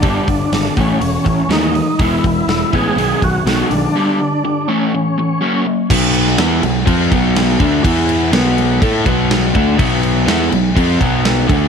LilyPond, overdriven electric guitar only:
\new Staff \with { instrumentName = "Overdriven electric guitar" } { \clef bass \time 4/4 \key a \lydian \tempo 4 = 123 <g, d g>8 <g, d>8 <g, d>8 <a, e a>8 <a, e>8 <a, e>8 <a, e a>8 <a, e>8 | <e gis b>8 <e gis>8 <e gis>8 <e gis b>8 <b, dis fis>8 <b, dis>8 <b, dis fis>8 <b, dis>8 | <g, d g>8 <g, d>8 <g, d>8 <a, e a>8 <a, e>8 <a, e>8 <fis ais cis'>8 <fis ais>8 | \key e \lydian <b, fis b>4 <e b e'>8 <b, fis>8 <eis c' eis'>8 <b, fis b>4 <d a d'>8 |
<e b e'>4 <b, fis b>4 <a e' a'>8 <b, fis b>4 <d a d'>8 | <b, fis b>4 <e b e'>8 <b, fis>8 <eis c' eis'>8 <b, fis b>4 <d a d'>8 | }